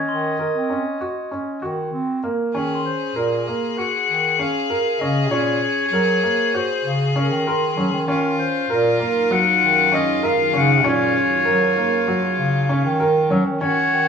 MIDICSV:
0, 0, Header, 1, 7, 480
1, 0, Start_track
1, 0, Tempo, 615385
1, 1986, Time_signature, 9, 3, 24, 8
1, 10983, End_track
2, 0, Start_track
2, 0, Title_t, "Glockenspiel"
2, 0, Program_c, 0, 9
2, 0, Note_on_c, 0, 89, 45
2, 0, Note_on_c, 0, 92, 41
2, 66, Note_on_c, 0, 84, 45
2, 176, Note_off_c, 0, 89, 0
2, 316, Note_off_c, 0, 92, 0
2, 1066, Note_off_c, 0, 84, 0
2, 1986, Note_on_c, 0, 80, 38
2, 2147, Note_on_c, 0, 84, 42
2, 2986, Note_off_c, 0, 80, 0
2, 3126, Note_off_c, 0, 84, 0
2, 5832, Note_on_c, 0, 84, 52
2, 6828, Note_off_c, 0, 84, 0
2, 10983, End_track
3, 0, Start_track
3, 0, Title_t, "Clarinet"
3, 0, Program_c, 1, 71
3, 0, Note_on_c, 1, 75, 76
3, 1475, Note_off_c, 1, 75, 0
3, 2223, Note_on_c, 1, 72, 76
3, 2467, Note_on_c, 1, 70, 75
3, 2478, Note_off_c, 1, 72, 0
3, 2948, Note_on_c, 1, 78, 97
3, 2959, Note_off_c, 1, 70, 0
3, 3428, Note_on_c, 1, 77, 86
3, 3440, Note_off_c, 1, 78, 0
3, 3901, Note_on_c, 1, 75, 77
3, 3913, Note_off_c, 1, 77, 0
3, 4136, Note_off_c, 1, 75, 0
3, 4141, Note_on_c, 1, 73, 88
3, 5105, Note_on_c, 1, 72, 95
3, 5117, Note_off_c, 1, 73, 0
3, 5375, Note_off_c, 1, 72, 0
3, 5591, Note_on_c, 1, 70, 68
3, 6096, Note_off_c, 1, 70, 0
3, 6541, Note_on_c, 1, 72, 81
3, 6791, Note_on_c, 1, 70, 92
3, 6803, Note_off_c, 1, 72, 0
3, 7274, Note_on_c, 1, 78, 116
3, 7286, Note_off_c, 1, 70, 0
3, 7755, Note_on_c, 1, 75, 97
3, 7767, Note_off_c, 1, 78, 0
3, 7999, Note_on_c, 1, 77, 95
3, 8011, Note_off_c, 1, 75, 0
3, 8244, Note_on_c, 1, 78, 97
3, 8256, Note_off_c, 1, 77, 0
3, 8474, Note_off_c, 1, 78, 0
3, 8481, Note_on_c, 1, 73, 95
3, 10361, Note_off_c, 1, 73, 0
3, 10620, Note_on_c, 1, 73, 102
3, 10983, Note_off_c, 1, 73, 0
3, 10983, End_track
4, 0, Start_track
4, 0, Title_t, "Violin"
4, 0, Program_c, 2, 40
4, 1982, Note_on_c, 2, 68, 91
4, 6271, Note_off_c, 2, 68, 0
4, 6308, Note_on_c, 2, 65, 85
4, 10355, Note_off_c, 2, 65, 0
4, 10625, Note_on_c, 2, 66, 91
4, 10983, Note_off_c, 2, 66, 0
4, 10983, End_track
5, 0, Start_track
5, 0, Title_t, "Ambient pad"
5, 0, Program_c, 3, 92
5, 6306, Note_on_c, 3, 61, 58
5, 6307, Note_on_c, 3, 51, 70
5, 6308, Note_on_c, 3, 68, 74
5, 6309, Note_on_c, 3, 54, 65
5, 6314, Note_on_c, 3, 63, 69
5, 10594, Note_off_c, 3, 61, 0
5, 10595, Note_off_c, 3, 51, 0
5, 10595, Note_off_c, 3, 54, 0
5, 10595, Note_off_c, 3, 68, 0
5, 10598, Note_off_c, 3, 63, 0
5, 10983, End_track
6, 0, Start_track
6, 0, Title_t, "Felt piano"
6, 0, Program_c, 4, 0
6, 0, Note_on_c, 4, 61, 86
6, 256, Note_off_c, 4, 61, 0
6, 307, Note_on_c, 4, 70, 58
6, 520, Note_off_c, 4, 70, 0
6, 545, Note_on_c, 4, 61, 60
6, 759, Note_off_c, 4, 61, 0
6, 786, Note_on_c, 4, 66, 66
6, 1000, Note_off_c, 4, 66, 0
6, 1025, Note_on_c, 4, 61, 56
6, 1239, Note_off_c, 4, 61, 0
6, 1264, Note_on_c, 4, 66, 62
6, 1692, Note_off_c, 4, 66, 0
6, 1744, Note_on_c, 4, 58, 67
6, 1958, Note_off_c, 4, 58, 0
6, 1986, Note_on_c, 4, 61, 74
6, 2412, Note_off_c, 4, 61, 0
6, 2465, Note_on_c, 4, 70, 62
6, 2678, Note_off_c, 4, 70, 0
6, 2709, Note_on_c, 4, 58, 60
6, 2920, Note_off_c, 4, 58, 0
6, 2948, Note_on_c, 4, 66, 57
6, 3373, Note_off_c, 4, 66, 0
6, 3426, Note_on_c, 4, 61, 62
6, 3639, Note_off_c, 4, 61, 0
6, 3665, Note_on_c, 4, 70, 63
6, 3878, Note_off_c, 4, 70, 0
6, 3910, Note_on_c, 4, 61, 68
6, 4121, Note_off_c, 4, 61, 0
6, 4142, Note_on_c, 4, 61, 89
6, 4570, Note_off_c, 4, 61, 0
6, 4625, Note_on_c, 4, 70, 65
6, 4838, Note_off_c, 4, 70, 0
6, 4863, Note_on_c, 4, 58, 63
6, 5077, Note_off_c, 4, 58, 0
6, 5104, Note_on_c, 4, 66, 69
6, 5530, Note_off_c, 4, 66, 0
6, 5583, Note_on_c, 4, 61, 75
6, 5797, Note_off_c, 4, 61, 0
6, 5826, Note_on_c, 4, 70, 75
6, 6039, Note_off_c, 4, 70, 0
6, 6064, Note_on_c, 4, 61, 64
6, 6277, Note_off_c, 4, 61, 0
6, 6303, Note_on_c, 4, 61, 90
6, 6730, Note_off_c, 4, 61, 0
6, 6783, Note_on_c, 4, 70, 76
6, 6997, Note_off_c, 4, 70, 0
6, 7019, Note_on_c, 4, 58, 63
6, 7234, Note_off_c, 4, 58, 0
6, 7259, Note_on_c, 4, 54, 81
6, 7688, Note_off_c, 4, 54, 0
6, 7738, Note_on_c, 4, 61, 75
6, 7954, Note_off_c, 4, 61, 0
6, 7980, Note_on_c, 4, 70, 79
6, 8195, Note_off_c, 4, 70, 0
6, 8217, Note_on_c, 4, 61, 75
6, 8433, Note_off_c, 4, 61, 0
6, 8457, Note_on_c, 4, 61, 97
6, 8886, Note_off_c, 4, 61, 0
6, 8932, Note_on_c, 4, 70, 71
6, 9150, Note_off_c, 4, 70, 0
6, 9179, Note_on_c, 4, 58, 67
6, 9395, Note_off_c, 4, 58, 0
6, 9419, Note_on_c, 4, 54, 73
6, 9848, Note_off_c, 4, 54, 0
6, 9901, Note_on_c, 4, 61, 77
6, 10115, Note_off_c, 4, 61, 0
6, 10138, Note_on_c, 4, 70, 72
6, 10354, Note_off_c, 4, 70, 0
6, 10376, Note_on_c, 4, 61, 70
6, 10593, Note_off_c, 4, 61, 0
6, 10616, Note_on_c, 4, 61, 85
6, 10983, Note_off_c, 4, 61, 0
6, 10983, End_track
7, 0, Start_track
7, 0, Title_t, "Bass clarinet"
7, 0, Program_c, 5, 71
7, 68, Note_on_c, 5, 51, 76
7, 295, Note_off_c, 5, 51, 0
7, 425, Note_on_c, 5, 60, 60
7, 653, Note_off_c, 5, 60, 0
7, 1267, Note_on_c, 5, 51, 72
7, 1493, Note_off_c, 5, 51, 0
7, 1501, Note_on_c, 5, 60, 69
7, 1730, Note_off_c, 5, 60, 0
7, 1983, Note_on_c, 5, 51, 76
7, 2211, Note_off_c, 5, 51, 0
7, 2457, Note_on_c, 5, 46, 77
7, 2687, Note_off_c, 5, 46, 0
7, 3179, Note_on_c, 5, 51, 65
7, 3409, Note_off_c, 5, 51, 0
7, 3899, Note_on_c, 5, 49, 78
7, 4135, Note_on_c, 5, 46, 76
7, 4146, Note_off_c, 5, 49, 0
7, 4366, Note_off_c, 5, 46, 0
7, 4620, Note_on_c, 5, 54, 84
7, 4849, Note_off_c, 5, 54, 0
7, 5339, Note_on_c, 5, 49, 77
7, 5681, Note_off_c, 5, 49, 0
7, 5699, Note_on_c, 5, 51, 81
7, 6041, Note_off_c, 5, 51, 0
7, 6061, Note_on_c, 5, 54, 89
7, 6176, Note_off_c, 5, 54, 0
7, 6181, Note_on_c, 5, 51, 79
7, 6292, Note_off_c, 5, 51, 0
7, 6297, Note_on_c, 5, 51, 75
7, 6527, Note_off_c, 5, 51, 0
7, 6776, Note_on_c, 5, 46, 90
7, 7006, Note_off_c, 5, 46, 0
7, 7499, Note_on_c, 5, 51, 82
7, 7728, Note_off_c, 5, 51, 0
7, 8217, Note_on_c, 5, 49, 92
7, 8461, Note_on_c, 5, 46, 82
7, 8473, Note_off_c, 5, 49, 0
7, 8689, Note_off_c, 5, 46, 0
7, 8938, Note_on_c, 5, 54, 82
7, 9167, Note_off_c, 5, 54, 0
7, 9659, Note_on_c, 5, 49, 85
7, 10001, Note_off_c, 5, 49, 0
7, 10021, Note_on_c, 5, 51, 94
7, 10363, Note_off_c, 5, 51, 0
7, 10379, Note_on_c, 5, 54, 98
7, 10495, Note_off_c, 5, 54, 0
7, 10499, Note_on_c, 5, 51, 76
7, 10613, Note_off_c, 5, 51, 0
7, 10618, Note_on_c, 5, 51, 73
7, 10734, Note_off_c, 5, 51, 0
7, 10858, Note_on_c, 5, 51, 79
7, 10983, Note_off_c, 5, 51, 0
7, 10983, End_track
0, 0, End_of_file